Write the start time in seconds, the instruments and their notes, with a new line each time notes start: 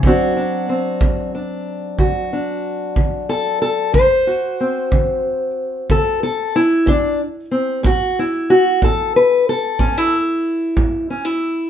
0.03 steel-string acoustic guitar D3 F#3 C4 D4 F#4, kick
0.37 steel-string acoustic guitar D4
0.69 steel-string acoustic guitar C4
1.01 steel-string acoustic guitar D3, kick
1.35 steel-string acoustic guitar D4
1.98 steel-string acoustic guitar D3 F#4, kick
2.33 steel-string acoustic guitar D4
2.96 steel-string acoustic guitar D3, kick
3.29 steel-string acoustic guitar A4
3.62 steel-string acoustic guitar A4
3.93 steel-string acoustic guitar D3 C5, kick
4.27 steel-string acoustic guitar F#4
4.60 steel-string acoustic guitar C4
4.91 steel-string acoustic guitar D3, kick
5.90 steel-string acoustic guitar D3 A4, kick
6.23 steel-string acoustic guitar A4
6.56 steel-string acoustic guitar E4
6.86 steel-string acoustic guitar D3 D4, kick
7.51 steel-string acoustic guitar C4
7.83 steel-string acoustic guitar A2 F#4, kick
8.19 steel-string acoustic guitar E4
8.50 steel-string acoustic guitar F#4
8.82 steel-string acoustic guitar A2 A4, kick
9.16 steel-string acoustic guitar B4
9.49 steel-string acoustic guitar A4
9.79 steel-string acoustic guitar A2 C#4, kick
9.98 steel-string acoustic guitar E4
10.76 steel-string acoustic guitar A2, kick
11.10 steel-string acoustic guitar C#4
11.25 steel-string acoustic guitar E4